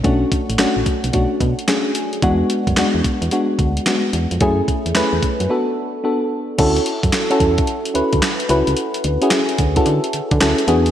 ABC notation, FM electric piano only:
X:1
M:4/4
L:1/16
Q:"Swing 16ths" 1/4=110
K:Dlyd
V:1 name="FM electric piano"
[A,CDF]3 z [A,CDF]3 z [A,CDF]3 z [A,CDG]3 z | [G,B,DF]3 z [G,B,DF]3 z [G,B,DF]3 z [G,B,DF]3 z | [A,CEG]3 z [A,CEB]3 z [B,DFA]3 z [B,DFA]3 z | [CEFA]4 z [CEFA]4 z [CEFB]3 z [CEFB]2- |
[CEFB]2 z [CEFG]3 z [CEFA]4 z [CEFA]2 [B,DFG]2 |]